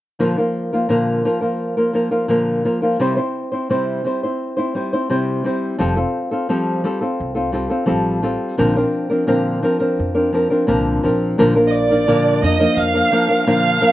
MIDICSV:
0, 0, Header, 1, 4, 480
1, 0, Start_track
1, 0, Key_signature, -2, "major"
1, 0, Tempo, 705882
1, 133, Time_signature, 4, 2, 24, 8
1, 2052, Tempo, 696056
1, 9571, End_track
2, 0, Start_track
2, 0, Title_t, "Violin section"
2, 0, Program_c, 0, 48
2, 8020, Note_on_c, 0, 75, 54
2, 8067, Note_off_c, 0, 75, 0
2, 8072, Note_on_c, 0, 74, 76
2, 8546, Note_off_c, 0, 74, 0
2, 8547, Note_on_c, 0, 75, 69
2, 8781, Note_on_c, 0, 77, 78
2, 8782, Note_off_c, 0, 75, 0
2, 9251, Note_off_c, 0, 77, 0
2, 9260, Note_on_c, 0, 77, 85
2, 9571, Note_off_c, 0, 77, 0
2, 9571, End_track
3, 0, Start_track
3, 0, Title_t, "Nylon-string guitar"
3, 0, Program_c, 1, 24
3, 131, Note_on_c, 1, 46, 51
3, 135, Note_on_c, 1, 50, 58
3, 135, Note_on_c, 1, 53, 64
3, 136, Note_on_c, 1, 58, 61
3, 137, Note_on_c, 1, 65, 65
3, 139, Note_on_c, 1, 70, 56
3, 249, Note_off_c, 1, 65, 0
3, 250, Note_off_c, 1, 70, 0
3, 253, Note_off_c, 1, 46, 0
3, 255, Note_off_c, 1, 50, 0
3, 255, Note_off_c, 1, 53, 0
3, 256, Note_off_c, 1, 58, 0
3, 257, Note_on_c, 1, 65, 38
3, 258, Note_on_c, 1, 70, 34
3, 264, Note_on_c, 1, 58, 33
3, 266, Note_on_c, 1, 53, 28
3, 487, Note_off_c, 1, 70, 0
3, 492, Note_off_c, 1, 65, 0
3, 495, Note_off_c, 1, 58, 0
3, 495, Note_on_c, 1, 70, 36
3, 496, Note_off_c, 1, 53, 0
3, 500, Note_on_c, 1, 65, 33
3, 503, Note_on_c, 1, 58, 36
3, 504, Note_on_c, 1, 53, 29
3, 596, Note_off_c, 1, 53, 0
3, 600, Note_off_c, 1, 58, 0
3, 604, Note_off_c, 1, 65, 0
3, 604, Note_off_c, 1, 70, 0
3, 604, Note_on_c, 1, 53, 53
3, 605, Note_on_c, 1, 46, 54
3, 605, Note_on_c, 1, 50, 55
3, 608, Note_on_c, 1, 58, 51
3, 612, Note_on_c, 1, 70, 61
3, 613, Note_on_c, 1, 65, 50
3, 841, Note_off_c, 1, 53, 0
3, 842, Note_off_c, 1, 58, 0
3, 843, Note_off_c, 1, 65, 0
3, 849, Note_on_c, 1, 53, 39
3, 850, Note_on_c, 1, 58, 40
3, 851, Note_on_c, 1, 65, 48
3, 852, Note_off_c, 1, 46, 0
3, 852, Note_off_c, 1, 50, 0
3, 852, Note_off_c, 1, 70, 0
3, 860, Note_on_c, 1, 70, 45
3, 950, Note_off_c, 1, 70, 0
3, 957, Note_off_c, 1, 58, 0
3, 958, Note_off_c, 1, 65, 0
3, 959, Note_on_c, 1, 70, 38
3, 965, Note_off_c, 1, 53, 0
3, 965, Note_on_c, 1, 58, 34
3, 966, Note_on_c, 1, 65, 33
3, 973, Note_on_c, 1, 53, 31
3, 1195, Note_off_c, 1, 70, 0
3, 1199, Note_off_c, 1, 65, 0
3, 1201, Note_off_c, 1, 58, 0
3, 1203, Note_on_c, 1, 70, 31
3, 1205, Note_off_c, 1, 53, 0
3, 1207, Note_on_c, 1, 65, 35
3, 1209, Note_on_c, 1, 58, 34
3, 1213, Note_on_c, 1, 53, 33
3, 1307, Note_off_c, 1, 53, 0
3, 1310, Note_off_c, 1, 58, 0
3, 1315, Note_off_c, 1, 65, 0
3, 1315, Note_on_c, 1, 53, 41
3, 1318, Note_off_c, 1, 70, 0
3, 1318, Note_on_c, 1, 58, 44
3, 1324, Note_on_c, 1, 65, 50
3, 1326, Note_on_c, 1, 70, 48
3, 1427, Note_off_c, 1, 70, 0
3, 1428, Note_off_c, 1, 65, 0
3, 1430, Note_off_c, 1, 58, 0
3, 1432, Note_off_c, 1, 53, 0
3, 1435, Note_on_c, 1, 70, 34
3, 1436, Note_on_c, 1, 65, 37
3, 1438, Note_on_c, 1, 58, 30
3, 1440, Note_on_c, 1, 53, 30
3, 1546, Note_off_c, 1, 53, 0
3, 1551, Note_off_c, 1, 65, 0
3, 1552, Note_off_c, 1, 58, 0
3, 1552, Note_on_c, 1, 46, 58
3, 1553, Note_on_c, 1, 50, 61
3, 1554, Note_on_c, 1, 53, 52
3, 1555, Note_off_c, 1, 70, 0
3, 1560, Note_on_c, 1, 58, 62
3, 1560, Note_on_c, 1, 65, 53
3, 1563, Note_on_c, 1, 70, 56
3, 1790, Note_off_c, 1, 53, 0
3, 1795, Note_off_c, 1, 58, 0
3, 1796, Note_off_c, 1, 65, 0
3, 1799, Note_on_c, 1, 53, 44
3, 1802, Note_off_c, 1, 70, 0
3, 1803, Note_off_c, 1, 46, 0
3, 1803, Note_on_c, 1, 58, 46
3, 1804, Note_off_c, 1, 50, 0
3, 1804, Note_on_c, 1, 65, 42
3, 1810, Note_on_c, 1, 70, 48
3, 1909, Note_off_c, 1, 70, 0
3, 1911, Note_off_c, 1, 65, 0
3, 1916, Note_off_c, 1, 58, 0
3, 1917, Note_on_c, 1, 70, 37
3, 1919, Note_on_c, 1, 65, 36
3, 1920, Note_off_c, 1, 53, 0
3, 1924, Note_on_c, 1, 58, 29
3, 1928, Note_on_c, 1, 53, 30
3, 2035, Note_off_c, 1, 53, 0
3, 2035, Note_on_c, 1, 48, 59
3, 2038, Note_on_c, 1, 55, 65
3, 2040, Note_off_c, 1, 58, 0
3, 2042, Note_off_c, 1, 65, 0
3, 2043, Note_off_c, 1, 70, 0
3, 2043, Note_on_c, 1, 60, 65
3, 2044, Note_on_c, 1, 64, 65
3, 2047, Note_on_c, 1, 72, 67
3, 2146, Note_off_c, 1, 72, 0
3, 2149, Note_off_c, 1, 64, 0
3, 2153, Note_off_c, 1, 60, 0
3, 2154, Note_on_c, 1, 72, 42
3, 2157, Note_on_c, 1, 64, 31
3, 2162, Note_on_c, 1, 60, 33
3, 2164, Note_off_c, 1, 48, 0
3, 2165, Note_off_c, 1, 55, 0
3, 2388, Note_off_c, 1, 72, 0
3, 2395, Note_off_c, 1, 64, 0
3, 2397, Note_on_c, 1, 72, 38
3, 2400, Note_off_c, 1, 60, 0
3, 2403, Note_on_c, 1, 64, 31
3, 2408, Note_on_c, 1, 60, 35
3, 2517, Note_off_c, 1, 64, 0
3, 2518, Note_off_c, 1, 60, 0
3, 2518, Note_off_c, 1, 72, 0
3, 2519, Note_on_c, 1, 48, 47
3, 2526, Note_on_c, 1, 55, 47
3, 2526, Note_on_c, 1, 60, 62
3, 2526, Note_on_c, 1, 64, 55
3, 2526, Note_on_c, 1, 72, 65
3, 2750, Note_off_c, 1, 55, 0
3, 2757, Note_off_c, 1, 60, 0
3, 2759, Note_on_c, 1, 55, 39
3, 2761, Note_off_c, 1, 64, 0
3, 2765, Note_on_c, 1, 60, 39
3, 2766, Note_off_c, 1, 72, 0
3, 2767, Note_off_c, 1, 48, 0
3, 2770, Note_on_c, 1, 64, 41
3, 2775, Note_on_c, 1, 72, 44
3, 2881, Note_off_c, 1, 72, 0
3, 2886, Note_off_c, 1, 55, 0
3, 2887, Note_off_c, 1, 64, 0
3, 2889, Note_off_c, 1, 60, 0
3, 2889, Note_on_c, 1, 72, 37
3, 2895, Note_on_c, 1, 64, 35
3, 2902, Note_on_c, 1, 60, 28
3, 3112, Note_off_c, 1, 72, 0
3, 3121, Note_off_c, 1, 64, 0
3, 3121, Note_on_c, 1, 72, 34
3, 3127, Note_off_c, 1, 60, 0
3, 3129, Note_on_c, 1, 64, 40
3, 3136, Note_on_c, 1, 60, 30
3, 3241, Note_off_c, 1, 60, 0
3, 3244, Note_off_c, 1, 64, 0
3, 3245, Note_on_c, 1, 55, 45
3, 3248, Note_off_c, 1, 72, 0
3, 3249, Note_on_c, 1, 60, 40
3, 3252, Note_on_c, 1, 64, 51
3, 3257, Note_on_c, 1, 72, 46
3, 3362, Note_off_c, 1, 72, 0
3, 3368, Note_off_c, 1, 64, 0
3, 3370, Note_off_c, 1, 55, 0
3, 3370, Note_on_c, 1, 72, 44
3, 3372, Note_off_c, 1, 60, 0
3, 3377, Note_on_c, 1, 64, 40
3, 3380, Note_on_c, 1, 60, 32
3, 3482, Note_off_c, 1, 60, 0
3, 3484, Note_off_c, 1, 64, 0
3, 3485, Note_off_c, 1, 72, 0
3, 3485, Note_on_c, 1, 48, 58
3, 3489, Note_on_c, 1, 55, 58
3, 3490, Note_on_c, 1, 60, 60
3, 3492, Note_on_c, 1, 64, 59
3, 3493, Note_on_c, 1, 72, 57
3, 3714, Note_off_c, 1, 55, 0
3, 3722, Note_on_c, 1, 55, 48
3, 3724, Note_off_c, 1, 60, 0
3, 3725, Note_off_c, 1, 64, 0
3, 3729, Note_off_c, 1, 72, 0
3, 3732, Note_off_c, 1, 48, 0
3, 3732, Note_on_c, 1, 60, 51
3, 3733, Note_on_c, 1, 64, 55
3, 3737, Note_on_c, 1, 72, 59
3, 3954, Note_off_c, 1, 55, 0
3, 3957, Note_off_c, 1, 60, 0
3, 3960, Note_on_c, 1, 53, 67
3, 3962, Note_on_c, 1, 55, 68
3, 3964, Note_off_c, 1, 64, 0
3, 3965, Note_on_c, 1, 60, 66
3, 3967, Note_on_c, 1, 65, 59
3, 3968, Note_off_c, 1, 72, 0
3, 3971, Note_on_c, 1, 69, 66
3, 4075, Note_off_c, 1, 69, 0
3, 4078, Note_off_c, 1, 65, 0
3, 4083, Note_on_c, 1, 69, 47
3, 4085, Note_off_c, 1, 60, 0
3, 4087, Note_on_c, 1, 65, 39
3, 4089, Note_off_c, 1, 53, 0
3, 4089, Note_off_c, 1, 55, 0
3, 4093, Note_on_c, 1, 60, 32
3, 4316, Note_off_c, 1, 69, 0
3, 4322, Note_off_c, 1, 65, 0
3, 4324, Note_on_c, 1, 69, 37
3, 4327, Note_off_c, 1, 60, 0
3, 4331, Note_on_c, 1, 65, 39
3, 4336, Note_on_c, 1, 60, 29
3, 4442, Note_off_c, 1, 60, 0
3, 4444, Note_off_c, 1, 65, 0
3, 4445, Note_off_c, 1, 69, 0
3, 4447, Note_on_c, 1, 53, 60
3, 4448, Note_on_c, 1, 55, 52
3, 4450, Note_on_c, 1, 60, 55
3, 4452, Note_on_c, 1, 65, 66
3, 4453, Note_on_c, 1, 69, 72
3, 4679, Note_off_c, 1, 55, 0
3, 4680, Note_off_c, 1, 60, 0
3, 4684, Note_off_c, 1, 65, 0
3, 4687, Note_on_c, 1, 55, 48
3, 4688, Note_off_c, 1, 69, 0
3, 4688, Note_on_c, 1, 60, 44
3, 4692, Note_on_c, 1, 65, 50
3, 4693, Note_off_c, 1, 53, 0
3, 4696, Note_on_c, 1, 69, 57
3, 4796, Note_off_c, 1, 69, 0
3, 4803, Note_off_c, 1, 65, 0
3, 4804, Note_on_c, 1, 69, 45
3, 4808, Note_off_c, 1, 60, 0
3, 4811, Note_on_c, 1, 65, 32
3, 4812, Note_off_c, 1, 55, 0
3, 4816, Note_on_c, 1, 60, 35
3, 5031, Note_off_c, 1, 69, 0
3, 5037, Note_off_c, 1, 65, 0
3, 5039, Note_on_c, 1, 69, 38
3, 5042, Note_off_c, 1, 60, 0
3, 5045, Note_on_c, 1, 65, 38
3, 5051, Note_on_c, 1, 60, 31
3, 5155, Note_off_c, 1, 60, 0
3, 5157, Note_on_c, 1, 55, 41
3, 5160, Note_off_c, 1, 65, 0
3, 5162, Note_off_c, 1, 69, 0
3, 5163, Note_on_c, 1, 60, 53
3, 5168, Note_on_c, 1, 65, 60
3, 5170, Note_on_c, 1, 69, 50
3, 5270, Note_off_c, 1, 69, 0
3, 5276, Note_off_c, 1, 65, 0
3, 5279, Note_on_c, 1, 69, 39
3, 5280, Note_off_c, 1, 60, 0
3, 5284, Note_on_c, 1, 65, 36
3, 5287, Note_off_c, 1, 55, 0
3, 5288, Note_on_c, 1, 60, 34
3, 5389, Note_off_c, 1, 60, 0
3, 5390, Note_on_c, 1, 53, 64
3, 5391, Note_off_c, 1, 69, 0
3, 5392, Note_off_c, 1, 65, 0
3, 5395, Note_on_c, 1, 55, 56
3, 5397, Note_on_c, 1, 60, 56
3, 5400, Note_on_c, 1, 65, 56
3, 5400, Note_on_c, 1, 69, 70
3, 5633, Note_off_c, 1, 55, 0
3, 5639, Note_off_c, 1, 65, 0
3, 5641, Note_off_c, 1, 60, 0
3, 5641, Note_on_c, 1, 55, 47
3, 5644, Note_off_c, 1, 53, 0
3, 5646, Note_off_c, 1, 69, 0
3, 5647, Note_on_c, 1, 65, 53
3, 5649, Note_on_c, 1, 60, 45
3, 5654, Note_on_c, 1, 69, 54
3, 5885, Note_off_c, 1, 60, 0
3, 5885, Note_on_c, 1, 46, 64
3, 5886, Note_off_c, 1, 55, 0
3, 5889, Note_off_c, 1, 65, 0
3, 5889, Note_off_c, 1, 69, 0
3, 5889, Note_on_c, 1, 53, 69
3, 5890, Note_on_c, 1, 50, 60
3, 5892, Note_on_c, 1, 62, 68
3, 5892, Note_on_c, 1, 70, 69
3, 5894, Note_on_c, 1, 60, 73
3, 6005, Note_off_c, 1, 70, 0
3, 6009, Note_off_c, 1, 62, 0
3, 6011, Note_off_c, 1, 46, 0
3, 6012, Note_off_c, 1, 60, 0
3, 6013, Note_off_c, 1, 50, 0
3, 6013, Note_off_c, 1, 53, 0
3, 6013, Note_on_c, 1, 70, 48
3, 6017, Note_on_c, 1, 62, 45
3, 6021, Note_on_c, 1, 60, 40
3, 6027, Note_on_c, 1, 53, 32
3, 6235, Note_off_c, 1, 70, 0
3, 6242, Note_off_c, 1, 62, 0
3, 6244, Note_on_c, 1, 70, 36
3, 6245, Note_off_c, 1, 60, 0
3, 6247, Note_off_c, 1, 53, 0
3, 6251, Note_on_c, 1, 62, 35
3, 6253, Note_on_c, 1, 60, 34
3, 6255, Note_on_c, 1, 53, 37
3, 6359, Note_off_c, 1, 53, 0
3, 6360, Note_off_c, 1, 62, 0
3, 6360, Note_off_c, 1, 70, 0
3, 6363, Note_off_c, 1, 60, 0
3, 6363, Note_on_c, 1, 46, 54
3, 6367, Note_on_c, 1, 53, 56
3, 6368, Note_on_c, 1, 50, 53
3, 6368, Note_on_c, 1, 62, 55
3, 6369, Note_on_c, 1, 70, 66
3, 6371, Note_on_c, 1, 60, 65
3, 6599, Note_off_c, 1, 53, 0
3, 6602, Note_off_c, 1, 60, 0
3, 6605, Note_off_c, 1, 62, 0
3, 6608, Note_on_c, 1, 53, 48
3, 6611, Note_on_c, 1, 60, 49
3, 6612, Note_off_c, 1, 46, 0
3, 6613, Note_off_c, 1, 70, 0
3, 6613, Note_on_c, 1, 62, 49
3, 6614, Note_off_c, 1, 50, 0
3, 6621, Note_on_c, 1, 70, 53
3, 6718, Note_off_c, 1, 70, 0
3, 6723, Note_off_c, 1, 62, 0
3, 6724, Note_off_c, 1, 60, 0
3, 6727, Note_on_c, 1, 70, 41
3, 6729, Note_off_c, 1, 53, 0
3, 6731, Note_on_c, 1, 62, 37
3, 6732, Note_on_c, 1, 60, 42
3, 6738, Note_on_c, 1, 53, 31
3, 6959, Note_off_c, 1, 70, 0
3, 6962, Note_off_c, 1, 62, 0
3, 6967, Note_on_c, 1, 70, 40
3, 6970, Note_off_c, 1, 60, 0
3, 6971, Note_on_c, 1, 62, 41
3, 6973, Note_off_c, 1, 53, 0
3, 6979, Note_on_c, 1, 60, 35
3, 6982, Note_on_c, 1, 53, 31
3, 7083, Note_off_c, 1, 53, 0
3, 7091, Note_off_c, 1, 60, 0
3, 7092, Note_on_c, 1, 53, 47
3, 7094, Note_off_c, 1, 62, 0
3, 7095, Note_off_c, 1, 70, 0
3, 7100, Note_on_c, 1, 60, 52
3, 7102, Note_on_c, 1, 62, 49
3, 7108, Note_on_c, 1, 70, 53
3, 7204, Note_off_c, 1, 70, 0
3, 7209, Note_off_c, 1, 62, 0
3, 7210, Note_off_c, 1, 60, 0
3, 7212, Note_on_c, 1, 70, 42
3, 7214, Note_off_c, 1, 53, 0
3, 7217, Note_on_c, 1, 62, 45
3, 7218, Note_on_c, 1, 60, 32
3, 7222, Note_on_c, 1, 53, 34
3, 7326, Note_off_c, 1, 53, 0
3, 7327, Note_off_c, 1, 60, 0
3, 7327, Note_off_c, 1, 70, 0
3, 7328, Note_off_c, 1, 62, 0
3, 7329, Note_on_c, 1, 46, 66
3, 7331, Note_on_c, 1, 50, 60
3, 7334, Note_on_c, 1, 53, 62
3, 7335, Note_on_c, 1, 60, 56
3, 7336, Note_on_c, 1, 62, 67
3, 7336, Note_on_c, 1, 70, 77
3, 7570, Note_off_c, 1, 53, 0
3, 7572, Note_off_c, 1, 60, 0
3, 7574, Note_off_c, 1, 62, 0
3, 7578, Note_off_c, 1, 70, 0
3, 7578, Note_on_c, 1, 53, 55
3, 7579, Note_off_c, 1, 46, 0
3, 7580, Note_off_c, 1, 50, 0
3, 7581, Note_on_c, 1, 60, 60
3, 7582, Note_on_c, 1, 62, 55
3, 7586, Note_on_c, 1, 70, 50
3, 7817, Note_off_c, 1, 53, 0
3, 7817, Note_off_c, 1, 70, 0
3, 7819, Note_on_c, 1, 46, 68
3, 7820, Note_off_c, 1, 60, 0
3, 7820, Note_off_c, 1, 62, 0
3, 7823, Note_on_c, 1, 50, 76
3, 7823, Note_on_c, 1, 58, 80
3, 7825, Note_on_c, 1, 53, 71
3, 7826, Note_on_c, 1, 70, 86
3, 7828, Note_on_c, 1, 62, 84
3, 7932, Note_off_c, 1, 70, 0
3, 7937, Note_off_c, 1, 62, 0
3, 7940, Note_off_c, 1, 58, 0
3, 7941, Note_off_c, 1, 53, 0
3, 7941, Note_on_c, 1, 70, 41
3, 7943, Note_off_c, 1, 46, 0
3, 7945, Note_off_c, 1, 50, 0
3, 7945, Note_on_c, 1, 62, 35
3, 7948, Note_on_c, 1, 58, 36
3, 7949, Note_on_c, 1, 53, 34
3, 8171, Note_off_c, 1, 70, 0
3, 8177, Note_off_c, 1, 62, 0
3, 8180, Note_on_c, 1, 70, 38
3, 8183, Note_off_c, 1, 53, 0
3, 8184, Note_off_c, 1, 58, 0
3, 8185, Note_on_c, 1, 62, 37
3, 8191, Note_on_c, 1, 53, 29
3, 8192, Note_on_c, 1, 58, 34
3, 8290, Note_off_c, 1, 53, 0
3, 8296, Note_off_c, 1, 58, 0
3, 8297, Note_off_c, 1, 62, 0
3, 8297, Note_on_c, 1, 50, 58
3, 8298, Note_off_c, 1, 70, 0
3, 8298, Note_on_c, 1, 53, 56
3, 8300, Note_on_c, 1, 46, 58
3, 8304, Note_on_c, 1, 58, 60
3, 8305, Note_on_c, 1, 62, 62
3, 8306, Note_on_c, 1, 70, 62
3, 8536, Note_off_c, 1, 53, 0
3, 8536, Note_off_c, 1, 58, 0
3, 8540, Note_off_c, 1, 50, 0
3, 8541, Note_off_c, 1, 46, 0
3, 8544, Note_off_c, 1, 62, 0
3, 8544, Note_on_c, 1, 53, 46
3, 8545, Note_off_c, 1, 70, 0
3, 8545, Note_on_c, 1, 58, 50
3, 8552, Note_on_c, 1, 62, 52
3, 8555, Note_on_c, 1, 70, 48
3, 8648, Note_off_c, 1, 70, 0
3, 8651, Note_off_c, 1, 62, 0
3, 8652, Note_off_c, 1, 58, 0
3, 8657, Note_off_c, 1, 53, 0
3, 8657, Note_on_c, 1, 70, 43
3, 8660, Note_on_c, 1, 58, 34
3, 8660, Note_on_c, 1, 62, 39
3, 8665, Note_on_c, 1, 53, 37
3, 8886, Note_off_c, 1, 70, 0
3, 8893, Note_off_c, 1, 62, 0
3, 8894, Note_on_c, 1, 70, 35
3, 8895, Note_off_c, 1, 58, 0
3, 8901, Note_on_c, 1, 62, 40
3, 8902, Note_off_c, 1, 53, 0
3, 8903, Note_on_c, 1, 58, 31
3, 8911, Note_on_c, 1, 53, 31
3, 9007, Note_off_c, 1, 53, 0
3, 9010, Note_off_c, 1, 58, 0
3, 9013, Note_off_c, 1, 62, 0
3, 9015, Note_on_c, 1, 53, 55
3, 9017, Note_off_c, 1, 70, 0
3, 9019, Note_on_c, 1, 58, 52
3, 9021, Note_on_c, 1, 62, 49
3, 9025, Note_on_c, 1, 70, 55
3, 9125, Note_off_c, 1, 70, 0
3, 9129, Note_off_c, 1, 62, 0
3, 9133, Note_on_c, 1, 70, 37
3, 9134, Note_off_c, 1, 58, 0
3, 9136, Note_off_c, 1, 53, 0
3, 9138, Note_on_c, 1, 62, 39
3, 9142, Note_on_c, 1, 58, 30
3, 9144, Note_on_c, 1, 53, 35
3, 9253, Note_off_c, 1, 53, 0
3, 9254, Note_off_c, 1, 58, 0
3, 9254, Note_off_c, 1, 70, 0
3, 9256, Note_off_c, 1, 62, 0
3, 9257, Note_on_c, 1, 46, 66
3, 9258, Note_on_c, 1, 50, 54
3, 9261, Note_on_c, 1, 53, 59
3, 9262, Note_on_c, 1, 58, 67
3, 9263, Note_on_c, 1, 62, 64
3, 9263, Note_on_c, 1, 70, 65
3, 9484, Note_off_c, 1, 53, 0
3, 9487, Note_off_c, 1, 58, 0
3, 9492, Note_off_c, 1, 62, 0
3, 9492, Note_on_c, 1, 53, 57
3, 9493, Note_off_c, 1, 70, 0
3, 9495, Note_on_c, 1, 58, 58
3, 9496, Note_off_c, 1, 46, 0
3, 9496, Note_off_c, 1, 50, 0
3, 9500, Note_on_c, 1, 62, 57
3, 9501, Note_on_c, 1, 70, 57
3, 9571, Note_off_c, 1, 53, 0
3, 9571, Note_off_c, 1, 58, 0
3, 9571, Note_off_c, 1, 62, 0
3, 9571, Note_off_c, 1, 70, 0
3, 9571, End_track
4, 0, Start_track
4, 0, Title_t, "Upright bass"
4, 0, Program_c, 2, 32
4, 3974, Note_on_c, 2, 29, 73
4, 4131, Note_off_c, 2, 29, 0
4, 4937, Note_on_c, 2, 36, 61
4, 5249, Note_off_c, 2, 36, 0
4, 5418, Note_on_c, 2, 33, 61
4, 5729, Note_off_c, 2, 33, 0
4, 5899, Note_on_c, 2, 34, 75
4, 6055, Note_off_c, 2, 34, 0
4, 6862, Note_on_c, 2, 41, 61
4, 7175, Note_off_c, 2, 41, 0
4, 7342, Note_on_c, 2, 36, 62
4, 7561, Note_off_c, 2, 36, 0
4, 7590, Note_on_c, 2, 34, 55
4, 7804, Note_off_c, 2, 34, 0
4, 7830, Note_on_c, 2, 34, 73
4, 8295, Note_off_c, 2, 34, 0
4, 8541, Note_on_c, 2, 41, 74
4, 8696, Note_off_c, 2, 41, 0
4, 8777, Note_on_c, 2, 41, 66
4, 8934, Note_off_c, 2, 41, 0
4, 9571, End_track
0, 0, End_of_file